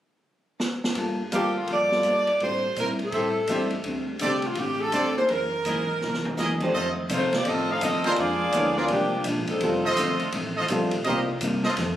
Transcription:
0.60 snare
0.84 snare
0.95 G2 G3 A#3 F4 A4, ride
1.32 D2 G3 A#3 C4 F4 G4 A4 A#4 F5, hi-hat pedal, ride
1.36 A4
1.59 F4
1.67 F2 G3 A#3 F4, ride
1.72 A4 D5
1.92 G3 C4 F4 A4, snare
2.03 G2 G3 A#3 F4, hi-hat pedal, ride
2.08 A4
2.27 ride
2.40 A2 G3 A3 D4 G4 C5, ride
2.44 C4 E4
2.76 A2 A#2 G3 C4 A#4, hi-hat pedal, ride
2.80 E4
2.99 ride
3.04 A4
3.12 A2 G3 C4 G4 A4 C5 E5, ride
3.16 E4
3.47 E2 A2 G3 A3 C4 D4 G4 A4 C5 D#5 E5, hi-hat pedal, ride
3.52 E4
3.70 ride
3.84 D2 D3 A3, ride
3.88 C4 G4
4.19 C2 D3 A3 C4 G4 A4 C5 D5, hi-hat pedal, ride
4.24 G4
4.42 ride
4.47 F4
4.55 A1 D3 A3 C4 G4, ride
4.60 G4
4.81 A4
4.92 G1 D3 A3 C4 G4 A4 C5 D5, hi-hat pedal, ride
5.16 A#3 D#4 G#4 C5, muted upright bass stroke
5.29 F#1 F#2 E3 A#3 A#4, ride
5.33 D#4
5.65 G#1 F#2 E3 A#3 D#4 E4 G#4 A#4 D#5, hi-hat pedal, ride
6.01 C2 F#2 E3 A#3 D#4, snare
6.14 snare
6.25 floor tom
6.37 C#2 F#2 E3 A#3 D#4 E4 G#4 A#4 D#5, snare, hi-hat pedal
6.60 F2 A3 D4 G4 C5, kick, crash
6.74 F2 D#3 A3 C4 F4 A4 C5 D#5
7.09 F2 C3 D#3 A3 C4, hi-hat pedal, ride
7.14 A3 D#4 F4 C5
7.33 snare, ride
7.37 A#3 D#4 G4 D5
7.45 F2 A2 D#3 A3 C4 F4 A4 D#5, ride
7.72 D#4 A4 C5 F5
7.81 F2 G2 D#3 A3 C4 F4 A4 D#5, hi-hat pedal, ride
7.94 F2
8.04 D#2 C4 F4 G#4 A#4 C5 D5, ride
8.16 F2 A#2 F3 A#3 F4 G#4 D5, ride
8.20 G#3 D4
8.52 D2 A#2 F3 G#3 B3 E4 A4, hi-hat pedal, ride
8.57 D4 C#5
8.76 G#3 C4 D4 F4 G#4 A#4 D5
8.80 D5
8.88 C2 A#2 F3 G#3 A#3 D4 G4, ride
8.93 D4
9.24 A#1 A#2 F3 G#3, hi-hat pedal, ride
9.29 D4
9.37 G#1
9.47 F1 F3 C4 D#4 A4, ride
9.60 F1 F2 D#3 G3 A3 C4 F4, ride
9.65 C4 A4
9.85 F4 A4 C5 D#5
9.96 G1 F2 D#3 A3 C4, hi-hat pedal, ride
10.20 ride
10.32 A1 F2 D#3 A3 C4, ride
10.56 F4 A4 C5 D#5
10.68 A#1 F2 D#3 G3 A3 C4 F4, hi-hat pedal, ride
10.73 A4
10.91 ride
11.04 C2 C3 G3 A#3 C4 F4 G4 A#4 C5 D#5, ride
11.09 D#4
11.41 G2 C3 G3 A#3 D#4, hi-hat pedal, ride
11.63 F4 A4 C5 D#5, snare
11.77 F2 D#3 A3, snare, ride
11.81 C4

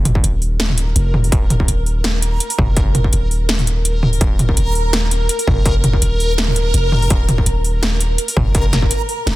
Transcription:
Already playing: F1 A#4
0.05 closed hi-hat, mid tom
0.15 kick
0.24 D#1, closed hi-hat
0.42 open hi-hat
0.60 snare, closed hi-hat
0.70 mid tom
0.78 closed hi-hat
0.96 F1, closed hi-hat
1.14 mid tom
1.24 open hi-hat
1.32 D#1, kick, closed hi-hat
1.50 closed hi-hat, mid tom
1.60 kick
1.68 D#1, closed hi-hat
1.86 open hi-hat
2.04 snare, closed hi-hat
2.22 closed hi-hat
2.40 closed hi-hat
2.50 open hi-hat
2.58 F1, kick, mid tom
2.77 kick, closed hi-hat
2.95 closed hi-hat, mid tom
3.04 kick
3.13 D#1, closed hi-hat
3.31 open hi-hat
3.49 snare, closed hi-hat
3.59 mid tom, open hi-hat
3.67 closed hi-hat
3.85 closed hi-hat
4.03 mid tom
4.13 open hi-hat
4.21 D#1, kick, closed hi-hat
4.39 closed hi-hat, mid tom
4.49 kick
4.57 D#1, closed hi-hat
4.75 open hi-hat
4.93 snare, closed hi-hat
5.11 closed hi-hat
5.29 closed hi-hat
5.39 open hi-hat
5.47 F1, kick, mid tom
5.66 kick, closed hi-hat
5.84 closed hi-hat, mid tom
5.93 kick
6.02 D#1, closed hi-hat
6.20 open hi-hat
6.38 snare, closed hi-hat
6.48 mid tom
6.56 closed hi-hat
6.74 F1, closed hi-hat
6.92 mid tom
7.02 open hi-hat
7.10 D#1, kick, closed hi-hat
7.29 closed hi-hat, mid tom
7.38 kick
7.46 D#1, closed hi-hat
7.64 open hi-hat
7.83 snare, closed hi-hat
8.01 closed hi-hat
8.18 closed hi-hat
8.28 open hi-hat
8.37 F1, kick, mid tom
8.55 kick, closed hi-hat
8.73 snare, closed hi-hat, mid tom
8.82 kick
8.91 closed hi-hat
9.09 open hi-hat
9.26 D#1, snare, closed hi-hat

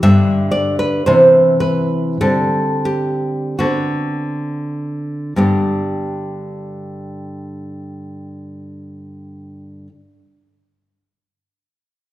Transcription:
0.03 G2 D3 B3 E5
0.51 D5
0.79 B4
1.06 C3 E3 B3 C5
1.60 B4
2.21 D3 G3 C4 A4
2.85 G4
3.59 D3 B3 C4 F#4
5.36 G2 D3 B3 D4 G4

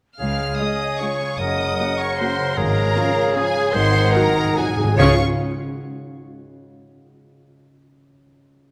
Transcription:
0.19 C#2 C#3 G#4 F5 G#5 F6
0.40 G#3
0.59 G#3 C#4 F4 G#4 D#5 D#6
0.81 C#5
0.99 G#3 C#4 F4 G#4 C#5 C#6
1.21 G#3
1.39 F#1 F#2 A#4 D#5 F#5 D#6
1.59 C#3
1.78 A#3 C#4 F#4
1.99 C#5 C#6
2.19 A#3 C#4 F#4 C5 C6
2.39 C#3
2.57 G#1 G#2 C#3 G#4 A#4 F5 A#5
2.77 G#3
2.96 F3 C#4 F4
3.17 C#5
3.35 F3 C#4 F4 G#4 G#5
3.56 G#3
3.73 G#1 G#2 D#3 C5 F#5 C6
3.94 G#2 D#3
4.03 G#2
4.12 G#2 F#3 D#4 F#4 A#4 A#5
4.19 G#2
4.28 G#2
4.35 G#2 D#5
4.44 G#2
4.52 G#2 F#3 G#4
4.56 G#2 D#4 F#4 G#5
4.68 G#2
4.77 G#2 D#3
4.84 G#2
4.94 C#2 C#3 C#4 C#5 F5
4.98 C#3 G#3 C#4 F4 G#4 C#6
5.03 F5

